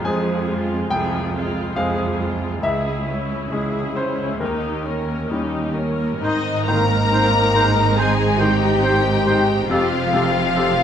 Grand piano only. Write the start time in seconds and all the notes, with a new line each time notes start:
Already playing: F2 A#5
0.05 G#3 C4 G#4 G#5
0.90 C2 G5
1.76 G#3 C4 G#4 F5
2.63 C#2 E5
3.52 G#3 C#4 G#4
3.96 C5
4.40 D#2 A#4
5.31 G3 C#4 D#4
6.22 G#2
6.68 D#3
7.12 C4
7.55 G#3
7.97 G#2
8.41 D#3
8.83 C4
9.26 G#3
9.70 F2
10.13 C3
10.56 C4